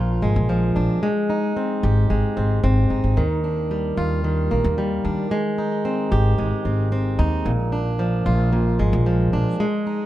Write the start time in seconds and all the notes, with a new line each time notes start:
Already playing: A#1 A#2 F3 D4 F4
0.22 G#1 G#3
0.36 A#1
0.49 F3
0.76 A#1 D4
1.03 G#3
1.30 D#4
1.57 C4
1.83 G#1 G4
2.10 G#1 G#3
2.37 G#1 C4
2.64 G#1 C4
2.90 G#1 D#4
3.04 G#1
3.17 D#2 D#3
3.44 D4
3.71 G3
3.97 D#2 F4
4.24 D#3
4.51 A#1 A#3
4.64 D#2
4.78 G3
5.05 D#2 D4
5.31 G#3
5.58 D#4
5.85 C4
6.12 G#1 G4
6.38 G#1 G#3
6.65 G#1 C4
6.92 C4
7.19 D#2 D#4
7.45 A#1 A#2
7.72 D4
7.99 F3
8.26 A#1 F4
8.53 A#2
8.79 G#1 G#3
8.93 A#1
9.06 F3
9.33 A#1 D4
9.60 G#3
9.87 D#4